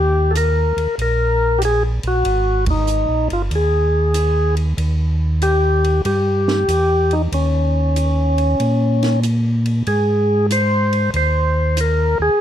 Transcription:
Already playing: D#2 G4
0.31 A4
0.35 A#4, hi-hat pedal, ride
0.77 D#2, ride
0.98 A#1, ride
1.02 A#4
1.58 G4, hi-hat pedal, ride
1.65 G#4
2.03 A#1, ride
2.07 F#4
2.25 G#1, ride
2.66 kick, ride
2.70 D#4
2.87 hi-hat pedal
3.09 A#1
3.30 G1 F4, ride
3.51 D#2, ride
3.55 G#4
4.14 hi-hat pedal, ride
4.57 ride
4.77 D#2, ride
5.42 G4, hi-hat pedal, ride
5.84 ride
6.05 G2 G4, ride
6.48 snare
6.68 E2, hi-hat pedal, ride
7.11 D#4, ride
7.32 D#2 C#4, ride
7.96 hi-hat pedal, ride
8.38 ride
8.60 A#2, ride
9.03 snare, ride
9.23 hi-hat pedal, ride
9.66 ride
9.87 G#2 G#4, ride
10.50 C5, hi-hat pedal, ride
10.93 ride
11.14 D#2 C5, ride
11.77 A#4, hi-hat pedal, ride
12.19 D#2 G#4

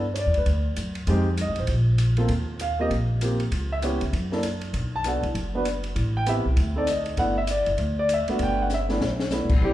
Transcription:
Already playing: G2
0.14 C#5, hi-hat pedal, ride
0.19 D5
0.26 E2
0.34 D2 B4, ride
0.46 D2, kick, ride
0.76 F#2, hi-hat pedal, ride
0.95 ride
1.07 F2 G#3 C4 D#4 G4, kick, ride
1.37 D#5, hi-hat pedal, ride
1.49 D#2
1.56 A1 C5, ride
1.67 A#1, kick, ride
1.98 hi-hat pedal, ride
2.17 A#3 C4 F4 A4, ride
2.28 D#2, kick, ride
2.59 F5, hi-hat pedal, ride
2.79 A#3 C4 F4 G4 D#5
2.90 A#1, kick, ride
3.21 A#3 C4 F4 G4, hi-hat pedal, ride
3.40 ride
3.51 C#2, kick, ride
3.72 E5
3.82 B3 C#4 E4 G4 C#5, hi-hat pedal, ride
4.01 C#3, ride
4.13 F#2, kick, ride
4.31 A#3 D4 E4 A4, snare
4.43 hi-hat pedal, ride
4.61 ride
4.73 B1, kick, ride
4.96 A5
5.04 B3 D4 F#4 A4, hi-hat pedal, ride
5.08 F#5
5.23 C2, ride
5.35 F#1, kick, ride
5.55 B3 D4 F#4 B4
5.65 hi-hat pedal, ride
5.84 ride
5.96 A1, kick, ride
6.17 G5
6.26 B3 C4 E4 G4 E5, hi-hat pedal, ride
6.45 C2
6.56 D2, kick, ride
6.75 A3 C4 D#4 A4 D5
6.87 D#5, hi-hat pedal, ride
7.06 ride
7.17 G1 A3 B3 D4 E4 F#5, kick, ride
7.38 E5
7.47 D5, hi-hat pedal, ride
7.66 F#1, ride
7.78 D2, kick, ride
7.99 D5
8.09 hi-hat pedal, ride
8.14 E5
8.28 A3 B3 D4 F#4, muted upright bass stroke, ride
8.39 G1 G5, kick, ride
8.62 F#5
8.70 snare, hi-hat pedal
8.74 E5
8.89 A3 B3 D4 E4, snare
9.01 B1, snare
9.19 snare
9.31 A3 B3 D4 E4, snare, hi-hat pedal
9.42 D2
9.49 B1, kick, crash
9.61 C2 G3 A3 C4 D4 E4 G4, kick

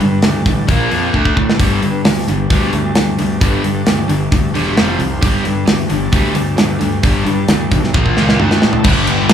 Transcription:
Already playing: G3 D4 A4
0.01 G2 D3, open hi-hat
0.22 D2 G2 D3, snare, open hi-hat
0.46 A1 G2 D3, kick, open hi-hat
0.67 A#1 A#2 F3 A#3 F4 C5, kick, open hi-hat
0.90 F2 A#2 F3 A#3, open hi-hat
1.13 D2 D3 A3 D4 A4 E5, kick
1.25 kick
1.36 A2 D3 A3, kick
1.50 snare
1.57 G1 G2 D3 G3, kick, open hi-hat
1.83 G2 D3, open hi-hat
2.05 D2 G2 D3, snare, open hi-hat
2.28 G1 G2 D3, open hi-hat
2.50 D2 G2 D3 G3, kick, open hi-hat
2.73 D2 G2 D3, open hi-hat
2.95 D2 G2 D3, snare, open hi-hat
3.19 D2 G2 D3, open hi-hat
3.41 G1 G2 D3 G3, kick, open hi-hat
3.64 G2 D3, open hi-hat
3.86 D2 G2 D3, snare, open hi-hat
4.09 G1 G2 D3, open hi-hat
4.32 D2 G2 D3, kick, open hi-hat
4.54 E1 G2 D3 G3, open hi-hat
4.76 F1 F2 C3 F3 C4 G4, snare, open hi-hat
4.99 C2 F2 C3, open hi-hat
5.21 G1 G2 D3 G3 D4 A4, kick, open hi-hat
5.44 G2 D3, open hi-hat
5.67 D2 G2 D3, snare, open hi-hat
5.90 G1 G2 D3, open hi-hat
6.12 D2 G2 D3 G3, kick, open hi-hat
6.35 D2 G2 D3, open hi-hat
6.57 D2 G2 D3, snare, open hi-hat
6.80 D2 G2 D3, open hi-hat
7.03 G1 G2 D3 G3, kick, open hi-hat
7.25 G2 D3, open hi-hat
7.48 D2 G2 D3, snare, open hi-hat
7.72 B1 G2 D3, kick, open hi-hat
7.84 snare
7.93 A#1 A#2 F3 A#3 F4 C5, kick, high tom
8.06 kick
8.17 C#2 A#2 F3 A#3, snare
8.29 snare
8.38 D2 D3 A3 D4 A4 E5, mid tom
8.51 snare
8.62 A2 D3 A3, snare
8.73 floor tom
8.82 G1 G2 D3 B3 D4 B4 G5, kick, crash
8.86 G3 D4
9.07 G1, ride
9.29 G2, snare, ride

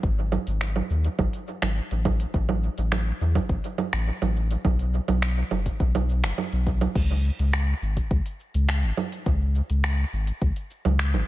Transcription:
0.03 G#1, kick, cabasa
0.18 cabasa
0.32 low conga, cabasa
0.47 G#1, open hi-hat, cabasa
0.61 finger snap, cabasa
0.76 low conga, cabasa
0.90 D#2, cabasa
1.04 open hi-hat, cabasa
1.19 G#1, kick, low conga, cabasa
1.33 open hi-hat, cabasa
1.48 cabasa
1.62 G#1, finger snap, open hi-hat, low conga, cabasa
1.77 cabasa
1.91 A1, open hi-hat, cabasa
2.05 kick, low conga, cabasa
2.20 open hi-hat, cabasa
2.34 A1, kick, cabasa
2.49 low conga, cabasa
2.63 cabasa
2.78 A1, open hi-hat, cabasa
2.92 finger snap, low conga, cabasa
3.07 cabasa
3.21 E2, cabasa
3.35 kick, open hi-hat, low conga, cabasa
3.49 A1, kick, cabasa
3.64 open hi-hat, cabasa
3.78 low conga, cabasa
3.93 A1, finger snap, open hi-hat, cabasa
4.07 cabasa
4.22 A1, open hi-hat, low conga, cabasa
4.36 cabasa
4.51 open hi-hat, cabasa
4.65 B1, kick, low conga, cabasa
4.79 open hi-hat, cabasa
4.94 cabasa
5.08 B1, open hi-hat, low conga, cabasa
5.22 finger snap, cabasa
5.37 cabasa
5.51 F#1, low conga, cabasa
5.66 kick, open hi-hat, cabasa
5.80 B1, kick, cabasa
5.95 open hi-hat, low conga, cabasa
6.09 cabasa
6.24 F#1, finger snap, open hi-hat, cabasa
6.38 low conga, cabasa
6.52 B1, open hi-hat, cabasa
6.67 kick, cabasa
6.81 open hi-hat, low conga, cabasa
6.95 C#2, kick, crash, cabasa
7.10 cabasa
7.25 cabasa
7.39 C#2, open hi-hat, cabasa
7.53 finger snap, cabasa
7.68 cabasa
7.82 G#1, cabasa
7.97 kick, open hi-hat, cabasa
8.11 C#2, kick, cabasa
8.26 open hi-hat, cabasa
8.40 cabasa
8.54 C#2, open hi-hat, cabasa
8.69 finger snap, cabasa
8.83 G#1, open hi-hat, cabasa
8.97 low conga, cabasa
9.12 open hi-hat, cabasa
9.26 C#2, kick, cabasa
9.41 cabasa
9.55 cabasa
9.70 C#2, open hi-hat, cabasa
9.84 finger snap, cabasa
9.99 cabasa
10.13 G#1, cabasa
10.27 open hi-hat, cabasa
10.41 C#2, kick, cabasa
10.56 open hi-hat, cabasa
10.70 cabasa
10.85 C#2, open hi-hat, low conga, cabasa
10.99 finger snap, cabasa
11.14 G#1, open hi-hat, low conga, cabasa

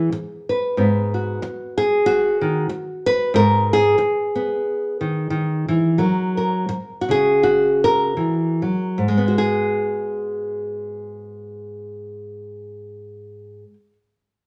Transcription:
Already playing: E3 G#4 B4
0.12 muted nylon-string guitar stroke
0.49 B4
0.77 G#2 B3
1.14 F#4
1.42 muted nylon-string guitar stroke
1.78 G#4
2.06 F#4
2.41 D#3
2.69 muted nylon-string guitar stroke
3.06 B4
3.34 G#2 A#4
3.73 G#4
3.98 muted nylon-string guitar stroke
4.35 B3
5.01 D#3
5.30 D#3
5.68 E3
5.98 F#3 A#4
6.37 A#4
6.69 muted nylon-string guitar stroke
7.01 F#4
7.09 C#3 G#4
7.43 F#4
7.84 A#4
8.17 E3
8.62 F#3
8.98 G#2
9.08 G#3
9.18 B3
9.28 F#4
9.38 G#4

